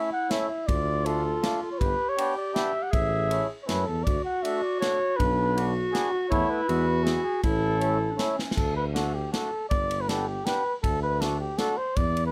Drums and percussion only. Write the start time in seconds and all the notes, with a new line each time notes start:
0.31 snare, ride
0.69 kick, ride
1.06 ride
1.43 snare, ride
1.81 kick, ride
2.18 ride
2.56 snare, ride
2.93 kick, ride
3.31 ride
3.69 snare, ride
4.07 kick, ride
4.45 ride
4.82 snare, ride
5.20 kick, ride
5.57 ride
5.95 snare, ride
6.31 kick, ride
6.69 ride
7.07 snare, ride
7.43 kick, ride
7.81 ride
8.19 snare, ride
8.39 snare
8.51 snare
8.57 kick, crash
8.96 snare, ride
9.34 snare, ride
9.71 kick, ride
9.91 ride
10.09 snare, ride
10.46 snare, ride
10.84 kick, ride
11.22 snare, ride
11.58 snare, ride
11.96 kick, ride
12.17 ride